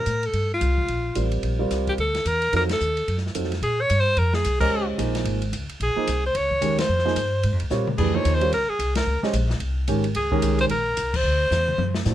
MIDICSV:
0, 0, Header, 1, 6, 480
1, 0, Start_track
1, 0, Tempo, 272480
1, 595, Time_signature, 4, 2, 24, 8
1, 21393, End_track
2, 0, Start_track
2, 0, Title_t, "Alto saxophone"
2, 0, Program_c, 0, 65
2, 0, Note_on_c, 0, 70, 83
2, 458, Note_on_c, 0, 69, 86
2, 484, Note_off_c, 0, 70, 0
2, 913, Note_off_c, 0, 69, 0
2, 948, Note_on_c, 0, 65, 79
2, 2293, Note_off_c, 0, 65, 0
2, 3329, Note_on_c, 0, 67, 69
2, 3408, Note_off_c, 0, 67, 0
2, 3524, Note_on_c, 0, 69, 87
2, 4002, Note_on_c, 0, 70, 97
2, 4029, Note_off_c, 0, 69, 0
2, 4468, Note_off_c, 0, 70, 0
2, 4518, Note_on_c, 0, 70, 84
2, 4634, Note_off_c, 0, 70, 0
2, 4806, Note_on_c, 0, 69, 85
2, 5671, Note_off_c, 0, 69, 0
2, 6401, Note_on_c, 0, 68, 89
2, 6719, Note_on_c, 0, 73, 99
2, 6746, Note_off_c, 0, 68, 0
2, 7050, Note_on_c, 0, 72, 91
2, 7076, Note_off_c, 0, 73, 0
2, 7371, Note_on_c, 0, 70, 81
2, 7397, Note_off_c, 0, 72, 0
2, 7653, Note_on_c, 0, 68, 91
2, 7679, Note_off_c, 0, 70, 0
2, 8101, Note_off_c, 0, 68, 0
2, 8111, Note_on_c, 0, 70, 84
2, 8555, Note_off_c, 0, 70, 0
2, 10270, Note_on_c, 0, 68, 84
2, 10958, Note_off_c, 0, 68, 0
2, 11026, Note_on_c, 0, 72, 91
2, 11216, Note_on_c, 0, 73, 105
2, 11242, Note_off_c, 0, 72, 0
2, 11962, Note_off_c, 0, 73, 0
2, 11977, Note_on_c, 0, 72, 86
2, 13326, Note_off_c, 0, 72, 0
2, 14058, Note_on_c, 0, 68, 85
2, 14370, Note_on_c, 0, 73, 98
2, 14396, Note_off_c, 0, 68, 0
2, 14705, Note_on_c, 0, 72, 94
2, 14731, Note_off_c, 0, 73, 0
2, 15016, Note_off_c, 0, 72, 0
2, 15045, Note_on_c, 0, 70, 88
2, 15314, Note_on_c, 0, 68, 79
2, 15340, Note_off_c, 0, 70, 0
2, 15784, Note_off_c, 0, 68, 0
2, 15792, Note_on_c, 0, 70, 74
2, 16229, Note_off_c, 0, 70, 0
2, 17902, Note_on_c, 0, 68, 84
2, 18606, Note_off_c, 0, 68, 0
2, 18686, Note_on_c, 0, 72, 96
2, 18763, Note_off_c, 0, 72, 0
2, 18865, Note_on_c, 0, 70, 90
2, 19660, Note_on_c, 0, 72, 88
2, 19686, Note_off_c, 0, 70, 0
2, 21072, Note_off_c, 0, 72, 0
2, 21393, End_track
3, 0, Start_track
3, 0, Title_t, "Grand piano"
3, 0, Program_c, 1, 0
3, 2030, Note_on_c, 1, 60, 46
3, 2032, Note_on_c, 1, 55, 51
3, 2033, Note_on_c, 1, 65, 43
3, 2033, Note_on_c, 1, 70, 48
3, 2037, Note_on_c, 1, 74, 52
3, 2751, Note_off_c, 1, 55, 0
3, 2751, Note_off_c, 1, 60, 0
3, 2752, Note_off_c, 1, 65, 0
3, 2752, Note_off_c, 1, 70, 0
3, 2754, Note_off_c, 1, 74, 0
3, 2803, Note_on_c, 1, 65, 60
3, 2804, Note_on_c, 1, 55, 64
3, 2806, Note_on_c, 1, 60, 54
3, 2807, Note_on_c, 1, 70, 56
3, 2810, Note_on_c, 1, 74, 62
3, 3444, Note_off_c, 1, 65, 0
3, 3445, Note_off_c, 1, 55, 0
3, 3446, Note_off_c, 1, 60, 0
3, 3446, Note_off_c, 1, 70, 0
3, 3448, Note_off_c, 1, 74, 0
3, 4449, Note_on_c, 1, 54, 56
3, 4455, Note_on_c, 1, 60, 48
3, 4458, Note_on_c, 1, 65, 49
3, 4461, Note_on_c, 1, 63, 48
3, 4463, Note_on_c, 1, 69, 57
3, 4711, Note_off_c, 1, 54, 0
3, 4714, Note_off_c, 1, 60, 0
3, 4716, Note_off_c, 1, 65, 0
3, 4717, Note_off_c, 1, 63, 0
3, 4718, Note_off_c, 1, 69, 0
3, 5900, Note_on_c, 1, 54, 47
3, 5901, Note_on_c, 1, 60, 46
3, 5903, Note_on_c, 1, 65, 43
3, 5904, Note_on_c, 1, 63, 40
3, 5904, Note_on_c, 1, 69, 56
3, 6158, Note_off_c, 1, 54, 0
3, 6158, Note_off_c, 1, 60, 0
3, 6160, Note_off_c, 1, 63, 0
3, 6160, Note_off_c, 1, 65, 0
3, 6160, Note_off_c, 1, 69, 0
3, 8104, Note_on_c, 1, 56, 58
3, 8105, Note_on_c, 1, 61, 59
3, 8110, Note_on_c, 1, 67, 59
3, 8112, Note_on_c, 1, 72, 58
3, 8117, Note_on_c, 1, 75, 60
3, 8737, Note_off_c, 1, 56, 0
3, 8738, Note_off_c, 1, 61, 0
3, 8740, Note_off_c, 1, 67, 0
3, 8741, Note_off_c, 1, 72, 0
3, 8744, Note_off_c, 1, 75, 0
3, 8769, Note_on_c, 1, 58, 56
3, 8770, Note_on_c, 1, 53, 57
3, 8774, Note_on_c, 1, 68, 53
3, 8775, Note_on_c, 1, 72, 61
3, 8777, Note_on_c, 1, 63, 55
3, 9483, Note_off_c, 1, 58, 0
3, 9484, Note_off_c, 1, 53, 0
3, 9485, Note_off_c, 1, 68, 0
3, 9486, Note_off_c, 1, 72, 0
3, 9487, Note_off_c, 1, 63, 0
3, 10504, Note_on_c, 1, 53, 57
3, 10507, Note_on_c, 1, 68, 54
3, 10508, Note_on_c, 1, 58, 60
3, 10513, Note_on_c, 1, 63, 62
3, 10517, Note_on_c, 1, 72, 61
3, 10675, Note_off_c, 1, 53, 0
3, 10677, Note_off_c, 1, 58, 0
3, 10677, Note_off_c, 1, 68, 0
3, 10680, Note_off_c, 1, 63, 0
3, 10682, Note_off_c, 1, 72, 0
3, 11648, Note_on_c, 1, 51, 59
3, 11650, Note_on_c, 1, 61, 56
3, 11651, Note_on_c, 1, 56, 64
3, 11651, Note_on_c, 1, 67, 58
3, 11656, Note_on_c, 1, 70, 65
3, 11910, Note_off_c, 1, 51, 0
3, 11911, Note_off_c, 1, 56, 0
3, 11911, Note_off_c, 1, 61, 0
3, 11912, Note_off_c, 1, 67, 0
3, 11914, Note_off_c, 1, 70, 0
3, 12424, Note_on_c, 1, 58, 60
3, 12425, Note_on_c, 1, 53, 72
3, 12426, Note_on_c, 1, 63, 65
3, 12427, Note_on_c, 1, 68, 64
3, 12430, Note_on_c, 1, 72, 76
3, 12594, Note_off_c, 1, 58, 0
3, 12595, Note_off_c, 1, 53, 0
3, 12595, Note_off_c, 1, 63, 0
3, 12596, Note_off_c, 1, 68, 0
3, 12597, Note_off_c, 1, 72, 0
3, 13576, Note_on_c, 1, 55, 70
3, 13579, Note_on_c, 1, 65, 57
3, 13582, Note_on_c, 1, 70, 54
3, 13583, Note_on_c, 1, 60, 57
3, 13584, Note_on_c, 1, 73, 77
3, 13833, Note_off_c, 1, 55, 0
3, 13834, Note_off_c, 1, 65, 0
3, 13836, Note_off_c, 1, 60, 0
3, 13836, Note_off_c, 1, 70, 0
3, 13836, Note_off_c, 1, 73, 0
3, 14060, Note_on_c, 1, 57, 58
3, 14062, Note_on_c, 1, 52, 58
3, 14064, Note_on_c, 1, 62, 59
3, 14064, Note_on_c, 1, 71, 72
3, 14065, Note_on_c, 1, 67, 61
3, 14314, Note_off_c, 1, 57, 0
3, 14315, Note_off_c, 1, 52, 0
3, 14316, Note_off_c, 1, 62, 0
3, 14316, Note_off_c, 1, 71, 0
3, 14317, Note_off_c, 1, 67, 0
3, 14333, Note_on_c, 1, 53, 62
3, 14335, Note_on_c, 1, 63, 51
3, 14336, Note_on_c, 1, 58, 58
3, 14337, Note_on_c, 1, 68, 50
3, 14340, Note_on_c, 1, 72, 68
3, 14757, Note_off_c, 1, 53, 0
3, 14757, Note_off_c, 1, 63, 0
3, 14758, Note_off_c, 1, 58, 0
3, 14759, Note_off_c, 1, 68, 0
3, 14760, Note_off_c, 1, 72, 0
3, 14817, Note_on_c, 1, 55, 65
3, 14818, Note_on_c, 1, 60, 62
3, 14818, Note_on_c, 1, 73, 69
3, 14819, Note_on_c, 1, 70, 65
3, 14825, Note_on_c, 1, 65, 61
3, 14988, Note_off_c, 1, 55, 0
3, 14989, Note_off_c, 1, 60, 0
3, 14989, Note_off_c, 1, 70, 0
3, 14989, Note_off_c, 1, 73, 0
3, 14993, Note_off_c, 1, 65, 0
3, 16259, Note_on_c, 1, 56, 71
3, 16259, Note_on_c, 1, 67, 59
3, 16268, Note_on_c, 1, 61, 62
3, 16270, Note_on_c, 1, 72, 63
3, 16271, Note_on_c, 1, 75, 80
3, 16428, Note_off_c, 1, 56, 0
3, 16428, Note_off_c, 1, 67, 0
3, 16433, Note_off_c, 1, 61, 0
3, 16433, Note_off_c, 1, 72, 0
3, 16434, Note_off_c, 1, 75, 0
3, 17403, Note_on_c, 1, 51, 61
3, 17405, Note_on_c, 1, 61, 60
3, 17410, Note_on_c, 1, 56, 55
3, 17414, Note_on_c, 1, 70, 66
3, 17415, Note_on_c, 1, 67, 59
3, 17662, Note_off_c, 1, 51, 0
3, 17663, Note_off_c, 1, 61, 0
3, 17665, Note_off_c, 1, 56, 0
3, 17668, Note_off_c, 1, 67, 0
3, 17668, Note_off_c, 1, 70, 0
3, 18170, Note_on_c, 1, 51, 79
3, 18171, Note_on_c, 1, 56, 70
3, 18174, Note_on_c, 1, 70, 82
3, 18178, Note_on_c, 1, 61, 74
3, 18178, Note_on_c, 1, 67, 66
3, 18802, Note_off_c, 1, 51, 0
3, 18802, Note_off_c, 1, 56, 0
3, 18803, Note_off_c, 1, 70, 0
3, 18805, Note_off_c, 1, 67, 0
3, 18806, Note_off_c, 1, 61, 0
3, 21239, Note_on_c, 1, 57, 54
3, 21244, Note_on_c, 1, 62, 51
3, 21245, Note_on_c, 1, 64, 48
3, 21253, Note_on_c, 1, 66, 51
3, 21254, Note_on_c, 1, 72, 56
3, 21393, Note_off_c, 1, 57, 0
3, 21393, Note_off_c, 1, 62, 0
3, 21393, Note_off_c, 1, 64, 0
3, 21393, Note_off_c, 1, 66, 0
3, 21393, Note_off_c, 1, 72, 0
3, 21393, End_track
4, 0, Start_track
4, 0, Title_t, "Upright bass"
4, 0, Program_c, 2, 32
4, 109, Note_on_c, 2, 45, 75
4, 574, Note_off_c, 2, 45, 0
4, 584, Note_on_c, 2, 43, 66
4, 1057, Note_off_c, 2, 43, 0
4, 1074, Note_on_c, 2, 36, 86
4, 1543, Note_off_c, 2, 36, 0
4, 1566, Note_on_c, 2, 34, 66
4, 2031, Note_off_c, 2, 34, 0
4, 2046, Note_on_c, 2, 33, 75
4, 2506, Note_off_c, 2, 33, 0
4, 2516, Note_on_c, 2, 34, 74
4, 2988, Note_off_c, 2, 34, 0
4, 3005, Note_on_c, 2, 36, 76
4, 3467, Note_off_c, 2, 36, 0
4, 3477, Note_on_c, 2, 38, 70
4, 3950, Note_off_c, 2, 38, 0
4, 3966, Note_on_c, 2, 40, 80
4, 4435, Note_off_c, 2, 40, 0
4, 4453, Note_on_c, 2, 41, 69
4, 4919, Note_off_c, 2, 41, 0
4, 4941, Note_on_c, 2, 39, 77
4, 5404, Note_off_c, 2, 39, 0
4, 5417, Note_on_c, 2, 42, 70
4, 5882, Note_off_c, 2, 42, 0
4, 5903, Note_on_c, 2, 41, 75
4, 6360, Note_off_c, 2, 41, 0
4, 6370, Note_on_c, 2, 46, 65
4, 6839, Note_off_c, 2, 46, 0
4, 6871, Note_on_c, 2, 43, 79
4, 7329, Note_off_c, 2, 43, 0
4, 7340, Note_on_c, 2, 41, 68
4, 7804, Note_off_c, 2, 41, 0
4, 7834, Note_on_c, 2, 36, 84
4, 8291, Note_off_c, 2, 36, 0
4, 8299, Note_on_c, 2, 37, 72
4, 8763, Note_off_c, 2, 37, 0
4, 8775, Note_on_c, 2, 34, 88
4, 9229, Note_off_c, 2, 34, 0
4, 9240, Note_on_c, 2, 32, 80
4, 9712, Note_off_c, 2, 32, 0
4, 9732, Note_on_c, 2, 37, 79
4, 10001, Note_off_c, 2, 37, 0
4, 10216, Note_on_c, 2, 34, 76
4, 10483, Note_off_c, 2, 34, 0
4, 10703, Note_on_c, 2, 36, 94
4, 11163, Note_off_c, 2, 36, 0
4, 11180, Note_on_c, 2, 37, 80
4, 11642, Note_off_c, 2, 37, 0
4, 11657, Note_on_c, 2, 39, 81
4, 12120, Note_off_c, 2, 39, 0
4, 12133, Note_on_c, 2, 41, 70
4, 12597, Note_off_c, 2, 41, 0
4, 12619, Note_on_c, 2, 43, 85
4, 13080, Note_off_c, 2, 43, 0
4, 13101, Note_on_c, 2, 44, 74
4, 13256, Note_off_c, 2, 44, 0
4, 13256, Note_on_c, 2, 41, 48
4, 13409, Note_off_c, 2, 41, 0
4, 13419, Note_on_c, 2, 37, 54
4, 13563, Note_off_c, 2, 37, 0
4, 13576, Note_on_c, 2, 46, 73
4, 14038, Note_off_c, 2, 46, 0
4, 14062, Note_on_c, 2, 41, 73
4, 14520, Note_off_c, 2, 41, 0
4, 14535, Note_on_c, 2, 39, 88
4, 14996, Note_off_c, 2, 39, 0
4, 15007, Note_on_c, 2, 37, 73
4, 15275, Note_off_c, 2, 37, 0
4, 15485, Note_on_c, 2, 36, 82
4, 15950, Note_off_c, 2, 36, 0
4, 15966, Note_on_c, 2, 37, 75
4, 16234, Note_off_c, 2, 37, 0
4, 16438, Note_on_c, 2, 34, 97
4, 16900, Note_off_c, 2, 34, 0
4, 16911, Note_on_c, 2, 36, 73
4, 17382, Note_off_c, 2, 36, 0
4, 17400, Note_on_c, 2, 32, 76
4, 17866, Note_off_c, 2, 32, 0
4, 17888, Note_on_c, 2, 37, 78
4, 18350, Note_off_c, 2, 37, 0
4, 18361, Note_on_c, 2, 36, 92
4, 18825, Note_off_c, 2, 36, 0
4, 18854, Note_on_c, 2, 34, 75
4, 19312, Note_off_c, 2, 34, 0
4, 19332, Note_on_c, 2, 36, 84
4, 19785, Note_off_c, 2, 36, 0
4, 19795, Note_on_c, 2, 38, 75
4, 20262, Note_off_c, 2, 38, 0
4, 20272, Note_on_c, 2, 40, 91
4, 20740, Note_off_c, 2, 40, 0
4, 20752, Note_on_c, 2, 42, 75
4, 21220, Note_off_c, 2, 42, 0
4, 21239, Note_on_c, 2, 45, 83
4, 21393, Note_off_c, 2, 45, 0
4, 21393, End_track
5, 0, Start_track
5, 0, Title_t, "Muted upright bass strokes"
5, 10026, Note_on_c, 9, 29, 36
5, 10202, Note_off_c, 9, 29, 0
5, 10496, Note_on_c, 9, 29, 34
5, 10673, Note_off_c, 9, 29, 0
5, 15300, Note_on_c, 9, 29, 32
5, 15477, Note_off_c, 9, 29, 0
5, 16256, Note_on_c, 9, 29, 36
5, 16432, Note_off_c, 9, 29, 0
5, 21393, End_track
6, 0, Start_track
6, 0, Title_t, "Drums"
6, 105, Note_on_c, 9, 44, 48
6, 105, Note_on_c, 9, 51, 50
6, 281, Note_off_c, 9, 44, 0
6, 281, Note_off_c, 9, 51, 0
6, 404, Note_on_c, 9, 51, 37
6, 580, Note_off_c, 9, 51, 0
6, 589, Note_on_c, 9, 51, 48
6, 765, Note_off_c, 9, 51, 0
6, 1075, Note_on_c, 9, 44, 51
6, 1075, Note_on_c, 9, 51, 55
6, 1251, Note_off_c, 9, 44, 0
6, 1251, Note_off_c, 9, 51, 0
6, 1370, Note_on_c, 9, 36, 50
6, 1547, Note_off_c, 9, 36, 0
6, 1557, Note_on_c, 9, 51, 40
6, 1733, Note_off_c, 9, 51, 0
6, 2031, Note_on_c, 9, 44, 43
6, 2031, Note_on_c, 9, 51, 52
6, 2207, Note_off_c, 9, 44, 0
6, 2207, Note_off_c, 9, 51, 0
6, 2317, Note_on_c, 9, 51, 40
6, 2493, Note_off_c, 9, 51, 0
6, 2517, Note_on_c, 9, 51, 48
6, 2693, Note_off_c, 9, 51, 0
6, 3006, Note_on_c, 9, 44, 56
6, 3006, Note_on_c, 9, 51, 52
6, 3013, Note_on_c, 9, 38, 32
6, 3182, Note_off_c, 9, 44, 0
6, 3182, Note_off_c, 9, 51, 0
6, 3189, Note_off_c, 9, 38, 0
6, 3299, Note_on_c, 9, 51, 38
6, 3301, Note_on_c, 9, 36, 48
6, 3475, Note_off_c, 9, 51, 0
6, 3477, Note_off_c, 9, 36, 0
6, 3489, Note_on_c, 9, 51, 41
6, 3666, Note_off_c, 9, 51, 0
6, 3779, Note_on_c, 9, 51, 43
6, 3786, Note_on_c, 9, 38, 41
6, 3955, Note_off_c, 9, 51, 0
6, 3963, Note_off_c, 9, 38, 0
6, 3973, Note_on_c, 9, 44, 48
6, 3973, Note_on_c, 9, 51, 55
6, 4149, Note_off_c, 9, 44, 0
6, 4149, Note_off_c, 9, 51, 0
6, 4258, Note_on_c, 9, 51, 41
6, 4434, Note_off_c, 9, 51, 0
6, 4453, Note_on_c, 9, 51, 51
6, 4629, Note_off_c, 9, 51, 0
6, 4744, Note_on_c, 9, 51, 55
6, 4751, Note_on_c, 9, 38, 65
6, 4920, Note_off_c, 9, 51, 0
6, 4927, Note_off_c, 9, 38, 0
6, 4937, Note_on_c, 9, 44, 46
6, 5113, Note_off_c, 9, 44, 0
6, 5228, Note_on_c, 9, 51, 40
6, 5404, Note_off_c, 9, 51, 0
6, 5425, Note_on_c, 9, 51, 49
6, 5595, Note_on_c, 9, 38, 28
6, 5602, Note_off_c, 9, 51, 0
6, 5753, Note_off_c, 9, 38, 0
6, 5753, Note_on_c, 9, 38, 36
6, 5896, Note_on_c, 9, 44, 44
6, 5896, Note_on_c, 9, 51, 52
6, 5929, Note_off_c, 9, 38, 0
6, 6064, Note_on_c, 9, 38, 22
6, 6072, Note_off_c, 9, 44, 0
6, 6072, Note_off_c, 9, 51, 0
6, 6195, Note_on_c, 9, 51, 39
6, 6221, Note_off_c, 9, 38, 0
6, 6221, Note_on_c, 9, 38, 38
6, 6372, Note_off_c, 9, 51, 0
6, 6386, Note_on_c, 9, 51, 49
6, 6397, Note_off_c, 9, 38, 0
6, 6563, Note_off_c, 9, 51, 0
6, 6862, Note_on_c, 9, 44, 54
6, 6862, Note_on_c, 9, 51, 62
6, 7038, Note_off_c, 9, 44, 0
6, 7038, Note_off_c, 9, 51, 0
6, 7340, Note_on_c, 9, 51, 46
6, 7516, Note_off_c, 9, 51, 0
6, 7635, Note_on_c, 9, 38, 59
6, 7811, Note_off_c, 9, 38, 0
6, 7830, Note_on_c, 9, 44, 49
6, 7830, Note_on_c, 9, 51, 60
6, 8006, Note_off_c, 9, 44, 0
6, 8006, Note_off_c, 9, 51, 0
6, 8117, Note_on_c, 9, 36, 80
6, 8119, Note_on_c, 9, 49, 67
6, 8294, Note_off_c, 9, 36, 0
6, 8296, Note_off_c, 9, 49, 0
6, 8786, Note_on_c, 9, 44, 50
6, 8786, Note_on_c, 9, 51, 61
6, 8962, Note_off_c, 9, 44, 0
6, 8962, Note_off_c, 9, 51, 0
6, 9068, Note_on_c, 9, 51, 47
6, 9075, Note_on_c, 9, 38, 45
6, 9244, Note_off_c, 9, 51, 0
6, 9251, Note_off_c, 9, 38, 0
6, 9254, Note_on_c, 9, 51, 51
6, 9430, Note_off_c, 9, 51, 0
6, 9543, Note_on_c, 9, 51, 44
6, 9719, Note_off_c, 9, 51, 0
6, 9739, Note_on_c, 9, 44, 46
6, 9739, Note_on_c, 9, 51, 58
6, 9915, Note_off_c, 9, 44, 0
6, 9915, Note_off_c, 9, 51, 0
6, 10030, Note_on_c, 9, 51, 44
6, 10207, Note_off_c, 9, 51, 0
6, 10225, Note_on_c, 9, 51, 52
6, 10401, Note_off_c, 9, 51, 0
6, 10700, Note_on_c, 9, 44, 61
6, 10700, Note_on_c, 9, 51, 68
6, 10876, Note_off_c, 9, 44, 0
6, 10876, Note_off_c, 9, 51, 0
6, 11181, Note_on_c, 9, 51, 55
6, 11357, Note_off_c, 9, 51, 0
6, 11470, Note_on_c, 9, 36, 55
6, 11646, Note_off_c, 9, 36, 0
6, 11656, Note_on_c, 9, 44, 57
6, 11656, Note_on_c, 9, 51, 58
6, 11832, Note_off_c, 9, 44, 0
6, 11832, Note_off_c, 9, 51, 0
6, 11951, Note_on_c, 9, 51, 65
6, 11958, Note_on_c, 9, 38, 82
6, 12128, Note_off_c, 9, 51, 0
6, 12135, Note_off_c, 9, 38, 0
6, 12305, Note_on_c, 9, 38, 27
6, 12462, Note_off_c, 9, 38, 0
6, 12462, Note_on_c, 9, 38, 41
6, 12614, Note_on_c, 9, 44, 50
6, 12614, Note_on_c, 9, 51, 61
6, 12638, Note_off_c, 9, 38, 0
6, 12790, Note_off_c, 9, 44, 0
6, 12790, Note_off_c, 9, 51, 0
6, 13095, Note_on_c, 9, 51, 56
6, 13271, Note_off_c, 9, 51, 0
6, 13383, Note_on_c, 9, 51, 44
6, 13560, Note_off_c, 9, 51, 0
6, 13567, Note_on_c, 9, 44, 51
6, 13574, Note_on_c, 9, 38, 39
6, 13743, Note_off_c, 9, 44, 0
6, 13750, Note_off_c, 9, 38, 0
6, 13868, Note_on_c, 9, 47, 67
6, 14044, Note_off_c, 9, 47, 0
6, 14060, Note_on_c, 9, 36, 62
6, 14060, Note_on_c, 9, 49, 64
6, 14236, Note_off_c, 9, 36, 0
6, 14236, Note_off_c, 9, 49, 0
6, 14534, Note_on_c, 9, 44, 59
6, 14534, Note_on_c, 9, 51, 61
6, 14710, Note_off_c, 9, 44, 0
6, 14710, Note_off_c, 9, 51, 0
6, 14820, Note_on_c, 9, 51, 43
6, 14996, Note_off_c, 9, 51, 0
6, 15019, Note_on_c, 9, 51, 57
6, 15195, Note_off_c, 9, 51, 0
6, 15494, Note_on_c, 9, 44, 47
6, 15494, Note_on_c, 9, 51, 59
6, 15670, Note_off_c, 9, 44, 0
6, 15670, Note_off_c, 9, 51, 0
6, 15772, Note_on_c, 9, 51, 67
6, 15779, Note_on_c, 9, 38, 83
6, 15948, Note_off_c, 9, 51, 0
6, 15955, Note_off_c, 9, 38, 0
6, 16264, Note_on_c, 9, 38, 54
6, 16441, Note_off_c, 9, 38, 0
6, 16444, Note_on_c, 9, 44, 51
6, 16444, Note_on_c, 9, 51, 67
6, 16620, Note_off_c, 9, 44, 0
6, 16620, Note_off_c, 9, 51, 0
6, 16735, Note_on_c, 9, 38, 46
6, 16912, Note_off_c, 9, 38, 0
6, 16913, Note_on_c, 9, 51, 52
6, 17089, Note_off_c, 9, 51, 0
6, 17396, Note_on_c, 9, 44, 46
6, 17396, Note_on_c, 9, 51, 60
6, 17572, Note_off_c, 9, 44, 0
6, 17572, Note_off_c, 9, 51, 0
6, 17685, Note_on_c, 9, 51, 47
6, 17861, Note_off_c, 9, 51, 0
6, 17874, Note_on_c, 9, 51, 55
6, 18050, Note_off_c, 9, 51, 0
6, 18175, Note_on_c, 9, 36, 61
6, 18351, Note_off_c, 9, 36, 0
6, 18358, Note_on_c, 9, 44, 55
6, 18358, Note_on_c, 9, 51, 71
6, 18534, Note_off_c, 9, 44, 0
6, 18534, Note_off_c, 9, 51, 0
6, 18650, Note_on_c, 9, 51, 48
6, 18826, Note_off_c, 9, 51, 0
6, 18839, Note_on_c, 9, 51, 59
6, 19015, Note_off_c, 9, 51, 0
6, 19322, Note_on_c, 9, 44, 57
6, 19322, Note_on_c, 9, 51, 64
6, 19498, Note_off_c, 9, 44, 0
6, 19498, Note_off_c, 9, 51, 0
6, 19619, Note_on_c, 9, 36, 86
6, 19622, Note_on_c, 9, 49, 80
6, 19796, Note_off_c, 9, 36, 0
6, 19798, Note_off_c, 9, 49, 0
6, 20284, Note_on_c, 9, 44, 57
6, 20291, Note_on_c, 9, 38, 47
6, 20460, Note_off_c, 9, 44, 0
6, 20467, Note_off_c, 9, 38, 0
6, 20572, Note_on_c, 9, 47, 53
6, 20748, Note_off_c, 9, 47, 0
6, 20755, Note_on_c, 9, 48, 69
6, 20932, Note_off_c, 9, 48, 0
6, 21042, Note_on_c, 9, 38, 75
6, 21218, Note_off_c, 9, 38, 0
6, 21230, Note_on_c, 9, 44, 55
6, 21237, Note_on_c, 9, 38, 49
6, 21393, Note_off_c, 9, 38, 0
6, 21393, Note_off_c, 9, 44, 0
6, 21393, End_track
0, 0, End_of_file